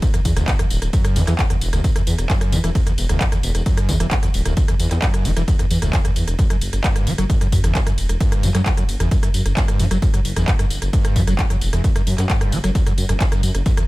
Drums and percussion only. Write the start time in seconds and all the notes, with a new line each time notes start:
0.02 kick, closed hi-hat, ride, tambourine
0.14 cross-stick, closed hi-hat, ride, tambourine
0.25 kick, open hi-hat, ride, tambourine
0.36 cross-stick, closed hi-hat, ride, tambourine
0.48 kick, clap, closed hi-hat, ride, tambourine
0.59 cross-stick, closed hi-hat, ride, tambourine
0.70 open hi-hat, ride, tambourine
0.82 cross-stick, closed hi-hat, ride, tambourine
0.93 kick, closed hi-hat, ride, tambourine
1.05 cross-stick, closed hi-hat, ride, tambourine
1.16 open hi-hat, ride, tambourine
1.27 cross-stick, clap, closed hi-hat, ride, tambourine
1.39 kick, clap, closed hi-hat, ride, tambourine
1.50 cross-stick, closed hi-hat, ride, tambourine
1.61 open hi-hat, ride, tambourine
1.73 cross-stick, closed hi-hat, ride, tambourine
1.84 kick, closed hi-hat, ride, tambourine
1.96 cross-stick, closed hi-hat, ride, tambourine
2.07 open hi-hat, ride, tambourine
2.18 cross-stick, closed hi-hat, ride, tambourine
2.30 kick, clap, closed hi-hat, ride, tambourine
2.41 cross-stick, closed hi-hat, ride, tambourine
2.52 open hi-hat, ride, tambourine
2.64 cross-stick, closed hi-hat, ride, tambourine
2.75 kick, closed hi-hat, ride, tambourine
2.87 cross-stick, closed hi-hat, ride, tambourine
2.98 open hi-hat, ride, tambourine
3.09 cross-stick, closed hi-hat, ride, tambourine
3.21 kick, clap, closed hi-hat, ride, tambourine
3.32 cross-stick, closed hi-hat, ride, tambourine
3.43 open hi-hat, ride, tambourine
3.55 cross-stick, closed hi-hat, ride, tambourine
3.66 kick, closed hi-hat, ride, tambourine
3.77 cross-stick, closed hi-hat, ride, tambourine
3.89 kick, open hi-hat, ride, tambourine
4.00 cross-stick, closed hi-hat, ride, tambourine
4.11 kick, clap, closed hi-hat, ride, tambourine
4.23 cross-stick, closed hi-hat, ride, tambourine
4.34 open hi-hat, ride, tambourine
4.45 cross-stick, closed hi-hat, ride, tambourine
4.57 kick, closed hi-hat, ride, tambourine
4.68 cross-stick, closed hi-hat, ride, tambourine
4.80 open hi-hat, ride, tambourine
4.91 cross-stick, clap, closed hi-hat, ride, tambourine
5.02 kick, clap, closed hi-hat, ride, tambourine
5.14 cross-stick, closed hi-hat, ride, tambourine
5.25 open hi-hat, ride, tambourine
5.37 cross-stick, closed hi-hat, ride, tambourine
5.48 kick, closed hi-hat, ride, tambourine
5.59 cross-stick, closed hi-hat, ride, tambourine
5.71 open hi-hat, ride, tambourine
5.82 cross-stick, closed hi-hat, ride, tambourine
5.93 kick, clap, closed hi-hat, ride, tambourine
6.05 cross-stick, closed hi-hat, ride, tambourine
6.16 open hi-hat, ride, tambourine
6.28 cross-stick, closed hi-hat, ride, tambourine
6.39 kick, closed hi-hat, ride, tambourine
6.50 cross-stick, closed hi-hat, ride, tambourine
6.61 open hi-hat, ride, tambourine
6.73 cross-stick, closed hi-hat, ride, tambourine
6.84 kick, clap, closed hi-hat, ride, tambourine
6.96 cross-stick, closed hi-hat, ride, tambourine
7.07 open hi-hat, ride, tambourine
7.18 cross-stick, closed hi-hat, ride, tambourine
7.30 kick, closed hi-hat, ride, tambourine
7.41 cross-stick, closed hi-hat, ride, tambourine
7.52 kick, open hi-hat, ride, tambourine
7.64 cross-stick, closed hi-hat, ride, tambourine
7.75 kick, clap, closed hi-hat, ride, tambourine
7.87 cross-stick, closed hi-hat, ride, tambourine
7.98 open hi-hat, ride, tambourine
8.09 cross-stick, closed hi-hat, ride, tambourine
8.20 kick, closed hi-hat, ride, tambourine
8.32 cross-stick, closed hi-hat, ride, tambourine
8.43 open hi-hat, ride, tambourine
8.55 cross-stick, clap, closed hi-hat, ride, tambourine
8.66 kick, clap, closed hi-hat, ride, tambourine
8.77 cross-stick, closed hi-hat, ride, tambourine
8.89 open hi-hat, ride, tambourine
9.00 cross-stick, closed hi-hat, ride, tambourine
9.11 kick, closed hi-hat, ride, tambourine
9.23 cross-stick, closed hi-hat, ride, tambourine
9.34 open hi-hat, ride, tambourine
9.46 cross-stick, closed hi-hat, ride, tambourine
9.57 kick, clap, closed hi-hat, ride, tambourine
9.68 cross-stick, closed hi-hat, ride, tambourine
9.79 open hi-hat, ride, tambourine
9.91 cross-stick, closed hi-hat, ride, tambourine
10.02 kick, closed hi-hat, ride, tambourine
10.14 cross-stick, closed hi-hat, ride, tambourine
10.25 open hi-hat, ride, tambourine
10.36 cross-stick, closed hi-hat, ride, tambourine
10.48 kick, clap, closed hi-hat, ride, tambourine
10.59 cross-stick, closed hi-hat, ride, tambourine
10.70 open hi-hat, ride, tambourine
10.82 cross-stick, closed hi-hat, ride, tambourine
10.93 kick, closed hi-hat, ride, tambourine
11.05 cross-stick, closed hi-hat, ride, tambourine
11.16 kick, open hi-hat, ride, tambourine
11.27 cross-stick, closed hi-hat, ride, tambourine
11.39 kick, clap, closed hi-hat, ride, tambourine
11.50 cross-stick, closed hi-hat, ride, tambourine
11.61 open hi-hat, ride, tambourine
11.73 cross-stick, closed hi-hat, ride, tambourine
11.84 kick, closed hi-hat, ride, tambourine
11.96 cross-stick, closed hi-hat, ride, tambourine
12.07 open hi-hat, ride, tambourine
12.18 cross-stick, clap, closed hi-hat, ride, tambourine
12.30 kick, clap, closed hi-hat, ride, tambourine
12.41 cross-stick, closed hi-hat, ride, tambourine
12.52 open hi-hat, ride, tambourine
12.64 cross-stick, closed hi-hat, ride, tambourine
12.75 kick, closed hi-hat, ride, tambourine
12.87 cross-stick, closed hi-hat, ride, tambourine
12.98 open hi-hat, ride, tambourine
13.09 cross-stick, closed hi-hat, ride, tambourine
13.20 kick, clap, closed hi-hat, ride, tambourine
13.32 cross-stick, closed hi-hat, ride, tambourine
13.43 open hi-hat, ride, tambourine
13.55 cross-stick, closed hi-hat, ride, tambourine
13.66 kick, closed hi-hat, ride, tambourine
13.77 cross-stick, closed hi-hat, ride, tambourine